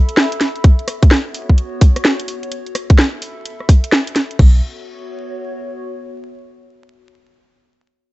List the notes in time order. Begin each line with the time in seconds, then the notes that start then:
Already playing: A4 E5 B5
0.09 closed hi-hat
0.17 snare
0.32 closed hi-hat
0.41 snare, open hi-hat
0.56 closed hi-hat
0.64 B3, kick, closed hi-hat
0.79 closed hi-hat
0.88 C#5, cross-stick, open hi-hat
1.01 F#4, kick, closed hi-hat
1.11 snare
1.34 open hi-hat
1.49 kick
1.58 closed hi-hat
1.81 kick, open hi-hat
1.96 cross-stick, closed hi-hat
2.05 snare
2.20 closed hi-hat
2.28 open hi-hat
2.43 closed hi-hat
2.52 A4, closed hi-hat
2.66 E5, closed hi-hat
2.75 cross-stick, open hi-hat
2.90 B5, kick, closed hi-hat
2.98 snare
3.22 open hi-hat
3.46 closed hi-hat
3.60 cross-stick
3.69 kick, open hi-hat
3.84 closed hi-hat
3.92 snare
4.07 closed hi-hat
4.16 snare, open hi-hat
4.31 closed hi-hat
4.39 B1 B3, kick, crash
4.48 F#4
4.56 C#5